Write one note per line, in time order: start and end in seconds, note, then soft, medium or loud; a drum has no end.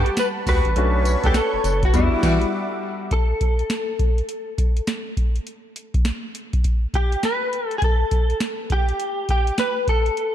0.00 0.72 G3 medium
0.00 0.43 A3 medium
0.00 0.43 B3 medium
0.00 0.43 D4 medium
0.00 0.44 F#4 medium
0.00 0.16 G4 medium
0.00 0.72 F#5 medium
0.00 1.90 A5 medium
0.00 0.72 B5 medium
0.06 closed hi-hat medium
0.17 0.27 B4 loud
0.17 snare loud
0.17 closed hi-hat medium
0.17 tambourine loud
0.47 0.62 D2 loud
0.47 0.67 G3 medium
0.47 0.67 A3 medium
0.47 0.67 B3 medium
0.47 0.68 F#4 medium
0.47 1.26 B4 medium
0.47 kick loud
0.47 open hi-hat medium
0.47 tambourine medium
0.65 0.74 A1 medium
0.65 closed hi-hat soft
0.76 1.16 B1 loud
0.76 1.91 A3 medium
0.76 1.92 C#4 medium
0.76 1.92 D4 medium
0.76 1.92 F#4 medium
0.76 1.92 B4 medium
0.76 1.93 C#5 medium
0.76 1.93 C#6 medium
0.76 closed hi-hat medium
1.05 closed hi-hat medium
1.05 tambourine medium
1.24 1.33 D2 medium
1.24 1.39 B3 medium
1.24 1.39 C#4 medium
1.24 1.39 D4 medium
1.24 1.35 G4 medium
1.24 1.39 A4 medium
1.24 kick loud
1.24 closed hi-hat medium
1.34 1.85 A4 medium
1.34 snare loud
1.34 closed hi-hat medium
1.34 tambourine loud
1.53 1.58 F#1 medium
1.64 1.89 F#1 medium
1.64 closed hi-hat medium
1.64 tambourine medium
1.83 1.95 F#4 medium
1.83 kick loud
1.83 closed hi-hat medium
1.93 2.09 E2 loud
1.93 3.09 G3 medium
1.93 3.10 G3 medium
1.93 3.09 B3 medium
1.93 3.10 D4 medium
1.93 2.50 E4 medium
1.93 3.10 F#4 medium
1.93 3.10 E5 medium
1.93 3.10 F#5 medium
1.93 3.10 D6 medium
1.93 kick medium
1.93 closed hi-hat medium
1.93 tambourine medium
2.23 2.38 E3 loud
2.23 2.44 G3 medium
2.23 2.44 D4 medium
2.23 2.44 E4 medium
2.23 2.44 F#4 medium
2.23 kick medium
2.23 snare medium
2.23 closed hi-hat medium
2.23 tambourine medium
2.41 closed hi-hat medium
3.11 5.14 A4 medium
3.11 kick loud
3.11 closed hi-hat medium
3.41 kick medium
3.41 closed hi-hat medium
3.59 closed hi-hat soft
3.70 snare loud
3.70 closed hi-hat medium
3.99 kick loud
3.99 closed hi-hat medium
4.18 closed hi-hat soft
4.29 closed hi-hat medium
4.58 kick medium
4.58 closed hi-hat medium
4.77 closed hi-hat medium
4.87 snare loud
4.87 closed hi-hat medium
5.17 kick medium
5.17 closed hi-hat medium
5.36 closed hi-hat soft
5.47 closed hi-hat medium
5.76 closed hi-hat medium
5.94 kick medium
5.94 closed hi-hat soft
6.05 snare loud
6.05 closed hi-hat medium
6.35 closed hi-hat medium
6.53 kick medium
6.53 closed hi-hat medium
6.64 kick medium
6.64 closed hi-hat medium
6.94 7.25 G4 medium
6.94 kick medium
6.94 closed hi-hat medium
7.12 closed hi-hat medium
7.23 7.67 B4 medium
7.23 snare loud
7.23 closed hi-hat medium
7.53 closed hi-hat medium
7.67 7.78 A4 medium
7.71 closed hi-hat soft
7.78 7.83 G#4 medium
7.78 kick loud
7.78 closed hi-hat medium
7.84 8.38 A4 medium
8.11 kick medium
8.11 closed hi-hat medium
8.30 closed hi-hat soft
8.40 snare loud
8.40 closed hi-hat medium
8.70 9.29 G4 medium
8.70 kick medium
8.70 closed hi-hat medium
8.89 closed hi-hat medium
9.00 closed hi-hat medium
9.29 9.59 G4 medium
9.29 kick medium
9.29 closed hi-hat medium
9.47 closed hi-hat medium
9.58 9.86 B4 medium
9.58 snare loud
9.58 closed hi-hat medium
9.88 10.35 A4 medium
9.88 kick medium
9.88 closed hi-hat medium
10.06 closed hi-hat soft
10.17 closed hi-hat medium